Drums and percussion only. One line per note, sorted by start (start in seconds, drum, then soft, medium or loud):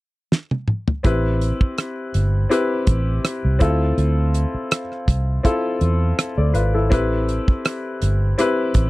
0.32 snare medium
0.51 high tom medium
0.68 mid tom medium
0.88 floor tom medium
1.04 kick loud
1.04 closed hi-hat medium
1.42 closed hi-hat medium
1.61 kick medium
1.78 cross-stick loud
1.78 closed hi-hat medium
2.14 closed hi-hat medium
2.51 closed hi-hat medium
2.87 kick medium
2.87 closed hi-hat medium
3.25 cross-stick loud
3.25 closed hi-hat medium
3.60 kick medium
3.60 closed hi-hat medium
3.98 closed hi-hat medium
4.34 closed hi-hat medium
4.71 cross-stick loud
4.71 closed hi-hat medium
4.92 cross-stick soft
5.08 kick medium
5.08 closed hi-hat medium
5.45 kick medium
5.45 closed hi-hat medium
5.81 closed hi-hat medium
6.19 cross-stick medium
6.19 closed hi-hat medium
6.55 closed hi-hat medium
6.92 kick loud
6.92 closed hi-hat medium
7.29 closed hi-hat medium
7.48 kick medium
7.65 cross-stick loud
7.65 closed hi-hat medium
8.02 closed hi-hat medium
8.39 closed hi-hat medium
8.74 kick medium
8.74 closed hi-hat medium